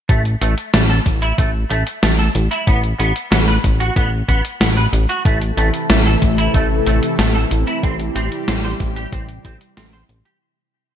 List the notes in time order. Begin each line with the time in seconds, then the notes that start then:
0.09 A1 A3, kick, closed hi-hat
0.25 closed hi-hat
0.41 A1 A3, closed hi-hat
0.58 closed hi-hat
0.74 A1 A3, snare, closed hi-hat
0.90 A4
1.06 A1, kick, closed hi-hat
1.22 E4, closed hi-hat
1.38 A1 A3, kick, closed hi-hat
1.70 A1 A3, closed hi-hat
1.87 closed hi-hat
2.03 A1 A3, snare, closed hi-hat
2.19 A4
2.35 A1, closed hi-hat
2.51 E4, closed hi-hat
2.67 A1 B3, kick, closed hi-hat
2.84 closed hi-hat
2.99 A1 B3, closed hi-hat
3.16 closed hi-hat
3.32 A1 B3, snare, closed hi-hat
3.48 B4
3.64 A1, kick, closed hi-hat
3.80 F#4, closed hi-hat
3.96 A1 B3, kick, closed hi-hat
4.28 A1 B3, kick, closed hi-hat
4.45 closed hi-hat
4.61 A1 B3, snare, closed hi-hat
4.77 B4
4.93 A1, closed hi-hat
5.09 F#4, closed hi-hat
5.25 A1 C3 E3 A3 E4 A4, kick, closed hi-hat
5.42 closed hi-hat
5.57 A1 A3, closed hi-hat
5.74 closed hi-hat
5.90 A1 A3, snare, closed hi-hat
6.06 A4
6.22 A1, kick, closed hi-hat
6.38 E4, closed hi-hat
6.54 A1 A3, kick, closed hi-hat
6.86 A1 A3, closed hi-hat
7.03 closed hi-hat
7.19 A1 A3, snare, closed hi-hat
7.35 A4
7.51 A1, closed hi-hat
7.67 E4, closed hi-hat
7.83 A1 G3 C4 G4, kick, closed hi-hat
8.00 closed hi-hat
8.16 A1 C4, closed hi-hat
8.32 closed hi-hat
8.48 A1 C4, snare, closed hi-hat
8.64 C5, closed hi-hat
8.80 A1, kick, closed hi-hat
8.96 G4, closed hi-hat
9.12 A1 C4, kick, closed hi-hat
9.29 closed hi-hat
9.45 A1 C4, kick, closed hi-hat
9.61 closed hi-hat
9.77 A1 C4, snare, closed hi-hat
9.93 C5
10.09 A1, closed hi-hat
10.25 G4, closed hi-hat